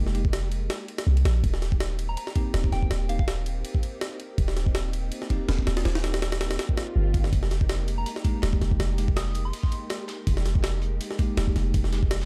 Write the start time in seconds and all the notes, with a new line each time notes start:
Already playing: F1 G#3 A#3 D#4 G4
0.07 snare
0.15 G#3 A#3 D#4 G4, ride
0.25 kick
0.33 snare, ride
0.52 ride
0.70 snare, ride
0.88 ride
0.98 snare, ride
1.07 C2
1.17 ride
1.25 A#1, snare, ride
1.44 D#1 A#3 C4 D#4 G4, kick, ride
1.54 snare
1.62 snare, ride
1.72 kick
1.80 snare, ride
1.99 ride
2.09 A#5
2.17 A#5, ride
2.27 snare
2.35 A#3 C4 D#4 G4, kick, ride
2.54 D#1, snare, ride
2.64 kick
2.72 D#1 G5, snare, ride
2.83 kick
2.91 D#1, snare, ride
3.09 A#3 C4 D#4 G4 F5, ride
3.19 F5, kick
3.28 snare, ride
3.46 ride
3.65 ride
3.75 kick
3.83 ride
4.01 snare, ride
4.20 ride
4.38 D#1, kick, ride
4.48 snare
4.57 snare, ride
4.67 kick
4.75 snare, ride
4.93 ride
5.12 ride
5.22 snare
5.30 A#3 C4 D#4 G4, kick, ride
5.49 D#1, snare, ride
5.59 kick
5.67 D#1, snare, ride
5.77 snare, ride
5.85 D#1, snare, ride
5.95 snare, ride
6.04 A#3 C4 D#4 G4, snare, ride
6.14 snare, ride
6.22 snare, ride
6.32 snare, ride
6.41 snare, ride
6.51 snare, ride
6.59 snare, ride, swell
6.69 kick
6.78 snare, ride
6.96 G1
7.14 kick, ride
7.24 snare
7.33 F1 G#3, kick, closed hi-hat, ride
7.43 snare
7.51 snare, closed hi-hat, ride
7.61 kick
7.69 snare, closed hi-hat, ride
7.88 closed hi-hat, ride
7.98 A#5
8.06 A#5, closed hi-hat, ride
8.16 snare
8.24 G#3 A#3 D#4 G4, kick, closed hi-hat, ride
8.42 D#1, snare, closed hi-hat, ride
8.53 kick
8.61 F1, snare, closed hi-hat, ride
8.71 kick
8.80 F1, snare, closed hi-hat, ride
8.98 G#3 A#3 D#4 G4, closed hi-hat, ride
9.08 kick
9.16 D#6, snare, closed hi-hat, ride
9.26 snare
9.35 closed hi-hat, ride
9.45 C6
9.53 open hi-hat, ride
9.63 kick, snare
9.72 closed hi-hat, ride
9.90 snare, closed hi-hat, ride
10.08 snare, closed hi-hat, ride
10.27 F1, kick, closed hi-hat, ride
10.37 snare
10.45 snare, closed hi-hat, ride
10.55 kick
10.63 snare, closed hi-hat, ride
10.82 closed hi-hat
11.01 closed hi-hat, ride
11.11 snare
11.19 G#3 A#3 D#4 G4, kick, closed hi-hat, ride
11.37 D#1, snare, closed hi-hat, ride
11.47 kick
11.56 F1, snare, closed hi-hat, ride
11.74 F1, kick, closed hi-hat, ride
11.84 snare
11.92 G#3 A#3 D#4 G4, snare, closed hi-hat, ride
12.03 kick
12.11 snare, closed hi-hat, ride
12.21 snare, closed hi-hat